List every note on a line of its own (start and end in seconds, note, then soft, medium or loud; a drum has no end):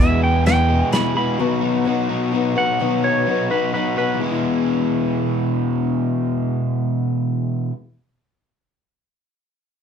0.00 0.45 E2 medium
0.00 0.82 E2 medium
0.00 0.46 B2 medium
0.00 0.23 E3 medium
0.00 0.23 G#3 medium
0.00 0.23 B3 medium
0.00 0.46 E4 medium
0.00 0.21 G#4 medium
0.00 0.22 E5 medium
0.22 0.44 E3 soft
0.22 0.45 G#3 soft
0.22 0.47 B3 medium
0.22 0.47 G#4 medium
0.22 0.46 G5 medium
0.45 0.69 E3 medium
0.45 0.69 G#3 medium
0.45 0.69 B3 medium
0.45 0.93 E4 medium
0.45 0.68 G#4 medium
0.45 0.92 G5 medium
0.45 snare medium
0.45 closed hi-hat medium
0.69 1.17 E2 medium
0.69 1.16 B2 medium
0.69 0.91 E3 medium
0.69 0.92 G#3 medium
0.69 0.94 B3 medium
0.69 0.94 G#4 medium
0.92 1.16 E3 medium
0.92 1.15 G#3 medium
0.92 1.15 B3 medium
0.92 1.15 E4 medium
0.92 1.14 G#4 medium
0.92 1.16 B5 medium
0.92 snare medium
0.92 closed hi-hat medium
1.15 1.39 E2 medium
1.15 1.37 B2 medium
1.15 1.38 E3 medium
1.15 1.38 G#3 medium
1.15 1.40 B3 medium
1.15 1.40 E4 soft
1.15 1.38 G#4 medium
1.15 2.07 B5 medium
1.38 2.11 B2 medium
1.38 1.86 D#3 medium
1.38 1.86 F#3 medium
1.38 1.63 B3 medium
1.38 1.62 D#4 medium
1.38 1.61 F#4 medium
1.38 1.87 B4 medium
1.61 1.87 B3 medium
1.61 1.87 D#4 medium
1.61 1.88 F#4 medium
1.86 2.10 F#3 medium
1.86 2.10 B3 medium
1.86 2.08 D#4 medium
1.86 2.08 F#4 medium
1.86 2.34 B4 medium
2.09 2.57 B2 medium
2.09 2.31 F#3 medium
2.09 2.33 B3 medium
2.09 2.33 D#4 medium
2.09 2.34 F#4 medium
2.33 2.56 F#3 medium
2.33 2.57 B3 medium
2.33 2.55 D#4 medium
2.33 2.55 F#4 medium
2.33 2.55 B4 medium
2.56 2.79 B2 medium
2.56 2.79 F#3 medium
2.56 2.80 B3 medium
2.56 2.80 D#4 medium
2.56 2.81 F#4 medium
2.56 2.79 B4 soft
2.56 3.03 F#5 medium
2.80 3.27 B2 medium
2.80 3.27 D#3 medium
2.80 3.25 F#3 medium
2.80 3.04 B3 medium
2.80 3.03 D#4 medium
2.80 3.02 F#4 medium
2.80 3.27 B4 medium
3.03 3.26 B3 soft
3.03 3.27 D#4 medium
3.03 3.28 F#4 medium
3.03 3.49 C#5 medium
3.26 3.51 F#3 medium
3.26 3.51 B3 medium
3.26 3.50 D#4 medium
3.26 3.49 F#4 medium
3.26 3.48 B4 medium
3.49 3.72 F#3 medium
3.49 3.73 B3 medium
3.49 3.74 D#4 medium
3.49 3.75 F#4 medium
3.49 3.73 B4 soft
3.49 3.73 B4 medium
3.53 3.98 B2 medium
3.74 3.98 F#3 medium
3.74 3.97 B3 medium
3.74 3.97 D#4 medium
3.74 3.96 F#4 medium
3.74 3.96 B4 medium
3.97 4.20 B2 medium
3.97 4.20 F#3 medium
3.97 4.20 B3 medium
3.97 4.19 D#4 medium
3.97 4.19 F#4 medium
3.97 4.20 B4 soft
3.97 4.20 B4 medium
4.14 7.64 E3 medium
4.20 7.70 E2 medium
4.20 7.71 B2 medium
4.20 7.72 E3 medium
4.20 7.73 G#3 medium
4.20 7.74 B3 medium
4.20 7.74 E4 medium
4.31 7.81 E4 medium
4.35 7.85 G#4 medium